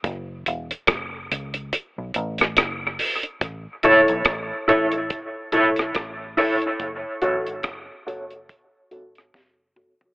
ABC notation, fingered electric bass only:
X:1
M:4/4
L:1/16
Q:"Swing 16ths" 1/4=71
K:F#m
V:1 name="Fingered electric bass" clef=bass
F,,,2 E,,, z F,,,2 C,,2 z B,,, A,,,2 F,,,2 z2 | A,,, z C,, B,,, A,,, z A,,,2 z2 B,,,2 A,,,3 z | F,,, z A,,, G,,, F,,, z F,,,2 z2 G,,,2 F,,,3 z |]